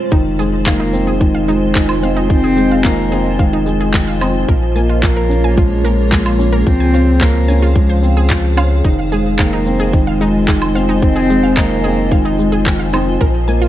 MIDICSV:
0, 0, Header, 1, 7, 480
1, 0, Start_track
1, 0, Key_signature, -4, "minor"
1, 0, Tempo, 545455
1, 103, Time_signature, 4, 2, 24, 8
1, 12041, End_track
2, 0, Start_track
2, 0, Title_t, "Ambient pad"
2, 0, Program_c, 0, 92
2, 109, Note_on_c, 0, 80, 97
2, 110, Note_on_c, 0, 65, 91
2, 110, Note_on_c, 0, 72, 80
2, 111, Note_on_c, 0, 75, 79
2, 3911, Note_off_c, 0, 80, 0
2, 3912, Note_off_c, 0, 72, 0
2, 3912, Note_off_c, 0, 75, 0
2, 3953, Note_on_c, 0, 58, 88
2, 3955, Note_on_c, 0, 68, 81
2, 3955, Note_on_c, 0, 73, 98
2, 5831, Note_off_c, 0, 65, 0
2, 5849, Note_off_c, 0, 58, 0
2, 5850, Note_off_c, 0, 68, 0
2, 5850, Note_off_c, 0, 73, 0
2, 5875, Note_on_c, 0, 68, 82
2, 5875, Note_on_c, 0, 72, 76
2, 5878, Note_on_c, 0, 77, 97
2, 7770, Note_off_c, 0, 68, 0
2, 7771, Note_off_c, 0, 77, 0
2, 7787, Note_on_c, 0, 65, 89
2, 7788, Note_on_c, 0, 75, 84
2, 7788, Note_on_c, 0, 80, 100
2, 11590, Note_off_c, 0, 65, 0
2, 11590, Note_off_c, 0, 75, 0
2, 11590, Note_off_c, 0, 80, 0
2, 11594, Note_off_c, 0, 72, 0
2, 11625, Note_on_c, 0, 58, 87
2, 11625, Note_on_c, 0, 68, 84
2, 11627, Note_on_c, 0, 65, 84
2, 11629, Note_on_c, 0, 73, 98
2, 12041, Note_off_c, 0, 58, 0
2, 12041, Note_off_c, 0, 65, 0
2, 12041, Note_off_c, 0, 68, 0
2, 12041, Note_off_c, 0, 73, 0
2, 12041, End_track
3, 0, Start_track
3, 0, Title_t, "Synth arpeggio sound"
3, 0, Program_c, 1, 84
3, 103, Note_on_c, 1, 63, 85
3, 151, Note_off_c, 1, 63, 0
3, 344, Note_on_c, 1, 68, 72
3, 372, Note_off_c, 1, 68, 0
3, 583, Note_on_c, 1, 77, 84
3, 631, Note_off_c, 1, 77, 0
3, 703, Note_on_c, 1, 63, 76
3, 751, Note_off_c, 1, 63, 0
3, 942, Note_on_c, 1, 68, 77
3, 972, Note_off_c, 1, 68, 0
3, 1184, Note_on_c, 1, 77, 79
3, 1232, Note_off_c, 1, 77, 0
3, 1305, Note_on_c, 1, 63, 76
3, 1352, Note_off_c, 1, 63, 0
3, 1547, Note_on_c, 1, 68, 86
3, 1574, Note_off_c, 1, 68, 0
3, 1789, Note_on_c, 1, 77, 71
3, 1834, Note_off_c, 1, 77, 0
3, 1905, Note_on_c, 1, 63, 75
3, 1952, Note_off_c, 1, 63, 0
3, 2144, Note_on_c, 1, 68, 81
3, 2173, Note_off_c, 1, 68, 0
3, 2389, Note_on_c, 1, 77, 73
3, 2434, Note_off_c, 1, 77, 0
3, 2506, Note_on_c, 1, 63, 82
3, 2553, Note_off_c, 1, 63, 0
3, 2745, Note_on_c, 1, 68, 73
3, 2773, Note_off_c, 1, 68, 0
3, 2987, Note_on_c, 1, 77, 83
3, 3033, Note_off_c, 1, 77, 0
3, 3108, Note_on_c, 1, 63, 82
3, 3154, Note_off_c, 1, 63, 0
3, 3349, Note_on_c, 1, 68, 74
3, 3375, Note_off_c, 1, 68, 0
3, 3587, Note_on_c, 1, 77, 78
3, 3633, Note_off_c, 1, 77, 0
3, 3707, Note_on_c, 1, 63, 74
3, 3753, Note_off_c, 1, 63, 0
3, 3947, Note_on_c, 1, 70, 81
3, 3974, Note_off_c, 1, 70, 0
3, 4187, Note_on_c, 1, 80, 74
3, 4233, Note_off_c, 1, 80, 0
3, 4307, Note_on_c, 1, 65, 71
3, 4353, Note_off_c, 1, 65, 0
3, 4546, Note_on_c, 1, 70, 77
3, 4573, Note_off_c, 1, 70, 0
3, 4789, Note_on_c, 1, 80, 77
3, 4834, Note_off_c, 1, 80, 0
3, 4908, Note_on_c, 1, 65, 82
3, 4954, Note_off_c, 1, 65, 0
3, 5144, Note_on_c, 1, 70, 78
3, 5173, Note_off_c, 1, 70, 0
3, 5385, Note_on_c, 1, 80, 81
3, 5432, Note_off_c, 1, 80, 0
3, 5505, Note_on_c, 1, 65, 76
3, 5552, Note_off_c, 1, 65, 0
3, 5742, Note_on_c, 1, 70, 80
3, 5771, Note_off_c, 1, 70, 0
3, 5985, Note_on_c, 1, 80, 79
3, 6032, Note_off_c, 1, 80, 0
3, 6105, Note_on_c, 1, 65, 67
3, 6152, Note_off_c, 1, 65, 0
3, 6349, Note_on_c, 1, 72, 80
3, 6375, Note_off_c, 1, 72, 0
3, 6585, Note_on_c, 1, 80, 77
3, 6632, Note_off_c, 1, 80, 0
3, 6709, Note_on_c, 1, 65, 75
3, 6754, Note_off_c, 1, 65, 0
3, 6947, Note_on_c, 1, 72, 80
3, 6974, Note_off_c, 1, 72, 0
3, 7188, Note_on_c, 1, 68, 77
3, 7214, Note_off_c, 1, 68, 0
3, 7307, Note_on_c, 1, 65, 80
3, 7353, Note_off_c, 1, 65, 0
3, 7546, Note_on_c, 1, 77, 98
3, 7573, Note_off_c, 1, 77, 0
3, 7785, Note_on_c, 1, 63, 81
3, 7832, Note_off_c, 1, 63, 0
3, 8026, Note_on_c, 1, 68, 74
3, 8053, Note_off_c, 1, 68, 0
3, 8262, Note_on_c, 1, 77, 84
3, 8311, Note_off_c, 1, 77, 0
3, 8386, Note_on_c, 1, 63, 76
3, 8433, Note_off_c, 1, 63, 0
3, 8621, Note_on_c, 1, 68, 78
3, 8651, Note_off_c, 1, 68, 0
3, 8863, Note_on_c, 1, 77, 79
3, 8911, Note_off_c, 1, 77, 0
3, 8985, Note_on_c, 1, 63, 78
3, 9032, Note_off_c, 1, 63, 0
3, 9224, Note_on_c, 1, 68, 84
3, 9252, Note_off_c, 1, 68, 0
3, 9463, Note_on_c, 1, 77, 73
3, 9511, Note_off_c, 1, 77, 0
3, 9582, Note_on_c, 1, 63, 73
3, 9631, Note_off_c, 1, 63, 0
3, 9818, Note_on_c, 1, 68, 79
3, 9850, Note_off_c, 1, 68, 0
3, 10059, Note_on_c, 1, 77, 73
3, 10109, Note_off_c, 1, 77, 0
3, 10181, Note_on_c, 1, 63, 78
3, 10230, Note_off_c, 1, 63, 0
3, 10419, Note_on_c, 1, 68, 74
3, 10450, Note_off_c, 1, 68, 0
3, 10659, Note_on_c, 1, 77, 86
3, 10709, Note_off_c, 1, 77, 0
3, 10781, Note_on_c, 1, 63, 80
3, 10830, Note_off_c, 1, 63, 0
3, 11019, Note_on_c, 1, 68, 76
3, 11050, Note_off_c, 1, 68, 0
3, 11259, Note_on_c, 1, 77, 76
3, 11309, Note_off_c, 1, 77, 0
3, 11380, Note_on_c, 1, 63, 70
3, 11429, Note_off_c, 1, 63, 0
3, 11622, Note_on_c, 1, 70, 85
3, 11651, Note_off_c, 1, 70, 0
3, 11860, Note_on_c, 1, 80, 72
3, 11910, Note_off_c, 1, 80, 0
3, 11981, Note_on_c, 1, 65, 78
3, 12030, Note_off_c, 1, 65, 0
3, 12041, End_track
4, 0, Start_track
4, 0, Title_t, "Cello"
4, 0, Program_c, 2, 42
4, 585, Note_on_c, 2, 58, 86
4, 1031, Note_off_c, 2, 58, 0
4, 1058, Note_on_c, 2, 56, 89
4, 2013, Note_on_c, 2, 60, 118
4, 2026, Note_off_c, 2, 56, 0
4, 2490, Note_on_c, 2, 58, 98
4, 2504, Note_off_c, 2, 60, 0
4, 2979, Note_on_c, 2, 56, 78
4, 2992, Note_off_c, 2, 58, 0
4, 3461, Note_off_c, 2, 56, 0
4, 4425, Note_on_c, 2, 58, 89
4, 4894, Note_on_c, 2, 56, 92
4, 4907, Note_off_c, 2, 58, 0
4, 5859, Note_on_c, 2, 60, 112
4, 5872, Note_off_c, 2, 56, 0
4, 6337, Note_on_c, 2, 58, 97
4, 6350, Note_off_c, 2, 60, 0
4, 6817, Note_off_c, 2, 58, 0
4, 6823, Note_on_c, 2, 56, 76
4, 7269, Note_off_c, 2, 56, 0
4, 8266, Note_on_c, 2, 58, 85
4, 8743, Note_on_c, 2, 56, 93
4, 8756, Note_off_c, 2, 58, 0
4, 9705, Note_on_c, 2, 60, 122
4, 9718, Note_off_c, 2, 56, 0
4, 10179, Note_on_c, 2, 58, 109
4, 10193, Note_off_c, 2, 60, 0
4, 10674, Note_on_c, 2, 56, 87
4, 10687, Note_off_c, 2, 58, 0
4, 11149, Note_off_c, 2, 56, 0
4, 12041, End_track
5, 0, Start_track
5, 0, Title_t, "Felt piano"
5, 0, Program_c, 3, 0
5, 0, Control_c, 3, 64, 127
5, 0, Note_on_c, 3, 53, 70
5, 0, Note_on_c, 3, 60, 76
5, 0, Note_on_c, 3, 61, 66
5, 106, Note_on_c, 3, 51, 77
5, 116, Control_c, 3, 64, 0
5, 117, Note_off_c, 3, 61, 0
5, 121, Note_off_c, 3, 53, 0
5, 121, Note_off_c, 3, 60, 0
5, 255, Control_c, 3, 64, 127
5, 333, Note_off_c, 3, 51, 0
5, 346, Note_on_c, 3, 56, 76
5, 572, Note_off_c, 3, 56, 0
5, 584, Note_on_c, 3, 51, 67
5, 720, Note_off_c, 3, 51, 0
5, 819, Note_on_c, 3, 60, 74
5, 1049, Note_off_c, 3, 60, 0
5, 1057, Note_on_c, 3, 51, 102
5, 1288, Note_off_c, 3, 51, 0
5, 1301, Note_on_c, 3, 56, 73
5, 1530, Note_off_c, 3, 56, 0
5, 1541, Note_on_c, 3, 51, 78
5, 1679, Note_off_c, 3, 51, 0
5, 1781, Note_on_c, 3, 60, 76
5, 2010, Note_off_c, 3, 60, 0
5, 2020, Note_on_c, 3, 51, 83
5, 2249, Note_off_c, 3, 51, 0
5, 2257, Note_on_c, 3, 56, 76
5, 2488, Note_off_c, 3, 56, 0
5, 2500, Note_on_c, 3, 51, 69
5, 2638, Note_off_c, 3, 51, 0
5, 2740, Note_on_c, 3, 60, 67
5, 2970, Note_off_c, 3, 60, 0
5, 2980, Note_on_c, 3, 51, 102
5, 3209, Note_off_c, 3, 51, 0
5, 3220, Note_on_c, 3, 56, 78
5, 3450, Note_off_c, 3, 56, 0
5, 3457, Note_on_c, 3, 51, 77
5, 3597, Note_off_c, 3, 51, 0
5, 3703, Note_on_c, 3, 60, 76
5, 3931, Note_off_c, 3, 60, 0
5, 3941, Note_on_c, 3, 53, 81
5, 3955, Control_c, 3, 64, 0
5, 4113, Control_c, 3, 64, 127
5, 4170, Note_off_c, 3, 53, 0
5, 4184, Note_on_c, 3, 58, 75
5, 4412, Note_off_c, 3, 58, 0
5, 4421, Note_on_c, 3, 53, 76
5, 4559, Note_off_c, 3, 53, 0
5, 4657, Note_on_c, 3, 61, 71
5, 4888, Note_off_c, 3, 61, 0
5, 4898, Note_on_c, 3, 53, 101
5, 5128, Note_off_c, 3, 53, 0
5, 5136, Note_on_c, 3, 58, 80
5, 5367, Note_off_c, 3, 58, 0
5, 5377, Note_on_c, 3, 53, 74
5, 5517, Note_off_c, 3, 53, 0
5, 5619, Note_on_c, 3, 61, 77
5, 5849, Note_off_c, 3, 61, 0
5, 5858, Note_on_c, 3, 53, 80
5, 5873, Control_c, 3, 64, 0
5, 6046, Control_c, 3, 64, 127
5, 6089, Note_off_c, 3, 53, 0
5, 6107, Note_on_c, 3, 60, 73
5, 6333, Note_off_c, 3, 60, 0
5, 6344, Note_on_c, 3, 53, 66
5, 6481, Note_off_c, 3, 53, 0
5, 6585, Note_on_c, 3, 61, 70
5, 6812, Note_off_c, 3, 61, 0
5, 6825, Note_on_c, 3, 53, 95
5, 7052, Note_off_c, 3, 53, 0
5, 7061, Note_on_c, 3, 60, 77
5, 7290, Note_off_c, 3, 60, 0
5, 7303, Note_on_c, 3, 53, 76
5, 7440, Note_off_c, 3, 53, 0
5, 7540, Note_on_c, 3, 61, 72
5, 7770, Note_off_c, 3, 61, 0
5, 7778, Note_on_c, 3, 51, 77
5, 7796, Control_c, 3, 64, 0
5, 7967, Control_c, 3, 64, 127
5, 8009, Note_off_c, 3, 51, 0
5, 8023, Note_on_c, 3, 56, 78
5, 8251, Note_off_c, 3, 56, 0
5, 8260, Note_on_c, 3, 51, 75
5, 8398, Note_off_c, 3, 51, 0
5, 8500, Note_on_c, 3, 60, 67
5, 8730, Note_off_c, 3, 60, 0
5, 8742, Note_on_c, 3, 51, 93
5, 8971, Note_off_c, 3, 51, 0
5, 8978, Note_on_c, 3, 56, 76
5, 9209, Note_off_c, 3, 56, 0
5, 9215, Note_on_c, 3, 51, 80
5, 9356, Note_off_c, 3, 51, 0
5, 9460, Note_on_c, 3, 60, 76
5, 9689, Note_off_c, 3, 60, 0
5, 9699, Note_on_c, 3, 51, 77
5, 9929, Note_off_c, 3, 51, 0
5, 9938, Note_on_c, 3, 56, 80
5, 10169, Note_off_c, 3, 56, 0
5, 10177, Note_on_c, 3, 51, 72
5, 10317, Note_off_c, 3, 51, 0
5, 10421, Note_on_c, 3, 60, 70
5, 10650, Note_off_c, 3, 60, 0
5, 10656, Note_on_c, 3, 51, 95
5, 10888, Note_off_c, 3, 51, 0
5, 10900, Note_on_c, 3, 56, 79
5, 11129, Note_off_c, 3, 56, 0
5, 11139, Note_on_c, 3, 51, 83
5, 11278, Note_off_c, 3, 51, 0
5, 11381, Note_on_c, 3, 60, 78
5, 11610, Note_off_c, 3, 60, 0
5, 11623, Note_on_c, 3, 53, 83
5, 11633, Control_c, 3, 64, 0
5, 11781, Control_c, 3, 64, 127
5, 11851, Note_off_c, 3, 53, 0
5, 11862, Note_on_c, 3, 58, 80
5, 12041, Note_off_c, 3, 58, 0
5, 12041, End_track
6, 0, Start_track
6, 0, Title_t, "Sub bass"
6, 0, Program_c, 4, 38
6, 104, Note_on_c, 4, 29, 90
6, 3920, Note_off_c, 4, 29, 0
6, 3947, Note_on_c, 4, 34, 88
6, 5841, Note_off_c, 4, 34, 0
6, 5865, Note_on_c, 4, 37, 92
6, 7760, Note_off_c, 4, 37, 0
6, 7783, Note_on_c, 4, 29, 94
6, 11599, Note_off_c, 4, 29, 0
6, 11624, Note_on_c, 4, 34, 91
6, 12041, Note_off_c, 4, 34, 0
6, 12041, End_track
7, 0, Start_track
7, 0, Title_t, "Drums"
7, 104, Note_on_c, 9, 36, 106
7, 192, Note_off_c, 9, 36, 0
7, 346, Note_on_c, 9, 82, 63
7, 434, Note_off_c, 9, 82, 0
7, 584, Note_on_c, 9, 36, 97
7, 584, Note_on_c, 9, 39, 102
7, 672, Note_off_c, 9, 36, 0
7, 672, Note_off_c, 9, 39, 0
7, 823, Note_on_c, 9, 82, 62
7, 911, Note_off_c, 9, 82, 0
7, 1064, Note_on_c, 9, 36, 102
7, 1152, Note_off_c, 9, 36, 0
7, 1305, Note_on_c, 9, 82, 59
7, 1393, Note_off_c, 9, 82, 0
7, 1543, Note_on_c, 9, 39, 96
7, 1544, Note_on_c, 9, 36, 101
7, 1631, Note_off_c, 9, 39, 0
7, 1632, Note_off_c, 9, 36, 0
7, 1663, Note_on_c, 9, 77, 63
7, 1751, Note_off_c, 9, 77, 0
7, 1785, Note_on_c, 9, 82, 61
7, 1873, Note_off_c, 9, 82, 0
7, 2024, Note_on_c, 9, 36, 113
7, 2112, Note_off_c, 9, 36, 0
7, 2266, Note_on_c, 9, 82, 63
7, 2354, Note_off_c, 9, 82, 0
7, 2504, Note_on_c, 9, 39, 103
7, 2505, Note_on_c, 9, 36, 99
7, 2592, Note_off_c, 9, 39, 0
7, 2593, Note_off_c, 9, 36, 0
7, 2743, Note_on_c, 9, 82, 62
7, 2831, Note_off_c, 9, 82, 0
7, 2986, Note_on_c, 9, 36, 104
7, 3074, Note_off_c, 9, 36, 0
7, 3224, Note_on_c, 9, 82, 62
7, 3312, Note_off_c, 9, 82, 0
7, 3466, Note_on_c, 9, 36, 98
7, 3466, Note_on_c, 9, 39, 103
7, 3554, Note_off_c, 9, 36, 0
7, 3554, Note_off_c, 9, 39, 0
7, 3708, Note_on_c, 9, 77, 59
7, 3708, Note_on_c, 9, 82, 62
7, 3796, Note_off_c, 9, 77, 0
7, 3796, Note_off_c, 9, 82, 0
7, 3948, Note_on_c, 9, 36, 113
7, 4036, Note_off_c, 9, 36, 0
7, 4189, Note_on_c, 9, 82, 63
7, 4277, Note_off_c, 9, 82, 0
7, 4427, Note_on_c, 9, 36, 104
7, 4430, Note_on_c, 9, 39, 100
7, 4515, Note_off_c, 9, 36, 0
7, 4518, Note_off_c, 9, 39, 0
7, 4672, Note_on_c, 9, 82, 68
7, 4760, Note_off_c, 9, 82, 0
7, 4907, Note_on_c, 9, 36, 106
7, 4995, Note_off_c, 9, 36, 0
7, 5151, Note_on_c, 9, 82, 66
7, 5239, Note_off_c, 9, 82, 0
7, 5387, Note_on_c, 9, 36, 105
7, 5388, Note_on_c, 9, 39, 100
7, 5475, Note_off_c, 9, 36, 0
7, 5476, Note_off_c, 9, 39, 0
7, 5508, Note_on_c, 9, 77, 59
7, 5596, Note_off_c, 9, 77, 0
7, 5627, Note_on_c, 9, 82, 59
7, 5715, Note_off_c, 9, 82, 0
7, 5867, Note_on_c, 9, 36, 110
7, 5955, Note_off_c, 9, 36, 0
7, 6107, Note_on_c, 9, 82, 67
7, 6195, Note_off_c, 9, 82, 0
7, 6345, Note_on_c, 9, 39, 91
7, 6346, Note_on_c, 9, 36, 95
7, 6433, Note_off_c, 9, 39, 0
7, 6434, Note_off_c, 9, 36, 0
7, 6585, Note_on_c, 9, 82, 65
7, 6673, Note_off_c, 9, 82, 0
7, 6825, Note_on_c, 9, 36, 105
7, 6913, Note_off_c, 9, 36, 0
7, 7067, Note_on_c, 9, 82, 63
7, 7155, Note_off_c, 9, 82, 0
7, 7304, Note_on_c, 9, 39, 92
7, 7305, Note_on_c, 9, 36, 107
7, 7392, Note_off_c, 9, 39, 0
7, 7393, Note_off_c, 9, 36, 0
7, 7545, Note_on_c, 9, 77, 57
7, 7545, Note_on_c, 9, 82, 64
7, 7633, Note_off_c, 9, 77, 0
7, 7633, Note_off_c, 9, 82, 0
7, 7784, Note_on_c, 9, 36, 104
7, 7872, Note_off_c, 9, 36, 0
7, 8026, Note_on_c, 9, 82, 62
7, 8114, Note_off_c, 9, 82, 0
7, 8263, Note_on_c, 9, 36, 105
7, 8263, Note_on_c, 9, 39, 89
7, 8351, Note_off_c, 9, 36, 0
7, 8351, Note_off_c, 9, 39, 0
7, 8501, Note_on_c, 9, 82, 62
7, 8589, Note_off_c, 9, 82, 0
7, 8742, Note_on_c, 9, 36, 110
7, 8830, Note_off_c, 9, 36, 0
7, 8983, Note_on_c, 9, 82, 65
7, 9071, Note_off_c, 9, 82, 0
7, 9222, Note_on_c, 9, 36, 95
7, 9225, Note_on_c, 9, 39, 100
7, 9310, Note_off_c, 9, 36, 0
7, 9313, Note_off_c, 9, 39, 0
7, 9343, Note_on_c, 9, 77, 60
7, 9431, Note_off_c, 9, 77, 0
7, 9464, Note_on_c, 9, 82, 56
7, 9552, Note_off_c, 9, 82, 0
7, 9702, Note_on_c, 9, 36, 106
7, 9790, Note_off_c, 9, 36, 0
7, 9942, Note_on_c, 9, 82, 62
7, 10030, Note_off_c, 9, 82, 0
7, 10182, Note_on_c, 9, 36, 102
7, 10183, Note_on_c, 9, 39, 92
7, 10270, Note_off_c, 9, 36, 0
7, 10271, Note_off_c, 9, 39, 0
7, 10421, Note_on_c, 9, 82, 60
7, 10509, Note_off_c, 9, 82, 0
7, 10663, Note_on_c, 9, 36, 103
7, 10751, Note_off_c, 9, 36, 0
7, 10905, Note_on_c, 9, 82, 59
7, 10993, Note_off_c, 9, 82, 0
7, 11143, Note_on_c, 9, 36, 97
7, 11144, Note_on_c, 9, 39, 93
7, 11231, Note_off_c, 9, 36, 0
7, 11232, Note_off_c, 9, 39, 0
7, 11385, Note_on_c, 9, 77, 61
7, 11385, Note_on_c, 9, 82, 57
7, 11473, Note_off_c, 9, 77, 0
7, 11473, Note_off_c, 9, 82, 0
7, 11624, Note_on_c, 9, 36, 102
7, 11712, Note_off_c, 9, 36, 0
7, 11865, Note_on_c, 9, 82, 60
7, 11953, Note_off_c, 9, 82, 0
7, 12041, End_track
0, 0, End_of_file